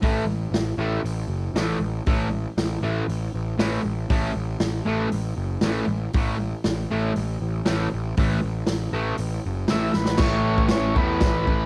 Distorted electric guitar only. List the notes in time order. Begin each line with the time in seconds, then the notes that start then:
0.02 A2 E3 A3
0.78 A2 E3 A3
1.56 A2 E3 A3
2.07 A2 E3 A3
2.83 A2 E3 A3
3.59 A2 E3 A3
4.10 A2 E3 A3
4.85 A2 E3 A3
5.63 A2 E3 A3
6.14 A2 E3 A3
6.91 A2 E3 A3
7.66 A2 E3 A3
8.18 A2 E3 A3
8.93 A2 E3 A3
9.70 A2 E3 A3
10.18 A2 E3
10.23 A3
10.95 E3 A3
11.00 A2